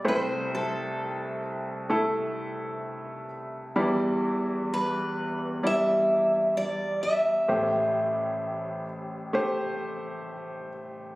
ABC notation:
X:1
M:4/4
L:1/8
Q:1/4=65
K:Em
V:1 name="Steel-string acoustic guitar"
c A3 z4 | z2 B2 e2 d e- | e3 z4 z |]
V:2 name="Grand piano"
[A,Ec]3 z [A,EA]3 z | [G,Ed]3 z [G,Ed]3 z | [A,Gc]3 z [A,Gc]3 z |]
V:3 name="Grand piano" clef=bass
[C,,C,]8 | [E,,E,]8 | [A,,,A,,]8 |]